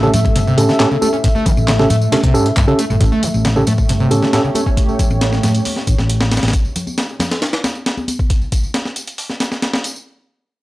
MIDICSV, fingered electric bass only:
0, 0, Header, 1, 2, 480
1, 0, Start_track
1, 0, Tempo, 441176
1, 1349, Time_signature, 4, 2, 24, 8
1, 11561, End_track
2, 0, Start_track
2, 0, Title_t, "Fingered electric bass"
2, 0, Program_c, 0, 33
2, 148, Note_on_c, 0, 45, 98
2, 321, Note_off_c, 0, 45, 0
2, 389, Note_on_c, 0, 31, 79
2, 561, Note_off_c, 0, 31, 0
2, 630, Note_on_c, 0, 45, 81
2, 717, Note_off_c, 0, 45, 0
2, 1709, Note_on_c, 0, 33, 92
2, 2014, Note_off_c, 0, 33, 0
2, 2071, Note_on_c, 0, 45, 100
2, 2242, Note_off_c, 0, 45, 0
2, 3156, Note_on_c, 0, 31, 84
2, 3238, Note_off_c, 0, 31, 0
2, 3272, Note_on_c, 0, 33, 101
2, 3358, Note_off_c, 0, 33, 0
2, 3637, Note_on_c, 0, 33, 93
2, 3938, Note_off_c, 0, 33, 0
2, 3992, Note_on_c, 0, 45, 91
2, 4163, Note_off_c, 0, 45, 0
2, 4232, Note_on_c, 0, 31, 80
2, 4403, Note_off_c, 0, 31, 0
2, 4472, Note_on_c, 0, 45, 80
2, 4558, Note_off_c, 0, 45, 0
2, 5555, Note_on_c, 0, 33, 92
2, 5857, Note_off_c, 0, 33, 0
2, 5913, Note_on_c, 0, 45, 93
2, 6084, Note_off_c, 0, 45, 0
2, 6391, Note_on_c, 0, 33, 89
2, 6478, Note_off_c, 0, 33, 0
2, 6514, Note_on_c, 0, 33, 96
2, 6937, Note_off_c, 0, 33, 0
2, 6995, Note_on_c, 0, 33, 93
2, 7077, Note_off_c, 0, 33, 0
2, 11561, End_track
0, 0, End_of_file